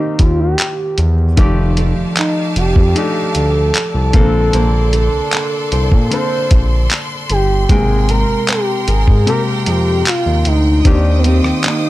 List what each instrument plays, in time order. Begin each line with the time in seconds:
Already playing: grand piano D#3 A#3 C4 G4, nylon-string guitar D#3 A#3 C4 G4, soft synth lead D#4
0.19 analog synth bass D#2, soft synth lead F4, kick, closed hi-hat
0.40 soft synth lead G4
0.59 clap, closed hi-hat
0.98 analog synth bass E2, closed hi-hat
1.37 analog synth bass F1, grand piano D#3 A3 G4 D5, nylon-string guitar F3 D5, string section G4 D5 F5 A5, kick, closed hi-hat
1.77 nylon-string guitar D#4 A4 D5, closed hi-hat
2.17 nylon-string guitar D#4, soft synth lead D#4, clap, closed hi-hat
2.56 analog synth bass F1, soft synth lead G4, nylon-string guitar D5, closed hi-hat
2.76 analog synth bass F2, kick
2.95 grand piano A3 D4 D#4 G4, soft synth lead A4, closed hi-hat
3.35 analog synth bass D2, closed hi-hat
3.74 clap, closed hi-hat
3.94 analog synth bass C2
4.13 analog synth bass A#1, grand piano C3 A#3 C4 A4, nylon-string guitar A#3, string section A4 C6, kick, closed hi-hat
4.20 grand piano D3
4.53 analog synth bass A#1, nylon-string guitar A#3 C5, closed hi-hat
4.93 nylon-string guitar D4 A4 C5, closed hi-hat
5.32 nylon-string guitar D4, clap, closed hi-hat
5.72 analog synth bass C2, nylon-string guitar C5, closed hi-hat
5.92 analog synth bass A#2, kick
6.11 grand piano D3 A#3 C4 A4, soft synth lead C5, closed hi-hat
6.51 analog synth bass A#1, kick, closed hi-hat
6.90 clap, closed hi-hat
7.29 analog synth bass G1, soft synth lead G4, closed hi-hat
7.69 analog synth bass G#1, grand piano B2 G#3 A#3 G5, nylon-string guitar G#3 A#4, soft synth lead G#4, string section A#4 G5, kick, closed hi-hat
7.75 grand piano C3
8.09 nylon-string guitar C4 A#4, soft synth lead A#4, closed hi-hat
8.48 nylon-string guitar C4, soft synth lead G4, clap, closed hi-hat
8.88 analog synth bass G#1, soft synth lead G#4, nylon-string guitar A#4, closed hi-hat
9.08 analog synth bass G#2, kick
9.26 grand piano C3 G#3 A#3 G4, soft synth lead A#4, closed hi-hat
9.66 analog synth bass F2, soft synth lead G4, closed hi-hat
10.06 soft synth lead F4, clap, closed hi-hat
10.26 analog synth bass D#2
10.45 analog synth bass D2, soft synth lead D#4, closed hi-hat
10.84 analog synth bass D#2, grand piano D#3 A#3 C4 G4, nylon-string guitar D#3 G4, soft synth lead D4, string section C5 D#6, kick, closed hi-hat
11.18 soft synth lead B3
11.24 nylon-string guitar A#3 C4 G4, soft synth lead C4, closed hi-hat
11.44 cross-stick
11.64 nylon-string guitar A#3, soft synth lead D#4, clap, closed hi-hat